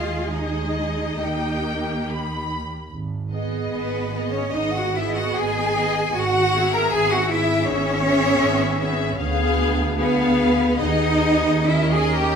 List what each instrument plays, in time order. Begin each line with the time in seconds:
Already playing: double bass section D#2, viola section G#3 G#4, cello section F4, violin section D#5 F5
0.33 cello section D#4, violin section D#5
1.20 double bass section D#2, viola section A#3 G4, violin section G5
2.07 violin section B5
2.91 double bass section G#1
3.32 viola section B3 G#4, violin section D#5
3.73 double bass section G#1, cello section B3, violin section B4
4.13 viola section B3 G#4, violin section D#5
4.34 cello section C#4, violin section C#5
4.53 double bass section G#1, viola section B3 G#4, cello section D#4, violin section D#5
4.75 cello section F#4, violin section F#5
4.95 viola section B3 G#4, cello section E4, violin section D#5 E5
5.16 cello section F#4, violin section F#5
5.35 double bass section G#1, cello section G#4, violin section G#5
5.75 viola section B3 G#4, violin section D#5
6.14 double bass section G#1, cello section F#4
6.18 violin section F#5
6.54 viola section B3 G#4, violin section E5
6.74 cello section A#4, violin section A#5
6.92 double bass section G#1, cello section G#4, violin section G#5
7.12 cello section F#4, violin section F#5
7.30 viola section B3 G#4, cello section E4, violin section E5
7.67 double bass section G#1, cello section C#4, violin section C#5
8.05 viola section B3 G#4, violin section E5
8.41 double bass section G#1
8.79 viola section B3 G#4, violin section E5
9.18 double bass section D2, viola section B3 G#4, violin section F5
9.99 viola section B3 G#4, cello section B3, violin section B4 F5
10.80 double bass section D#2, viola section B3 G#4, cello section D#4, violin section D#5
11.67 viola section C#4 A#4, cello section E4, violin section D#5 E5
11.92 cello section G#4, violin section G#5
12.15 cello section G4, violin section G5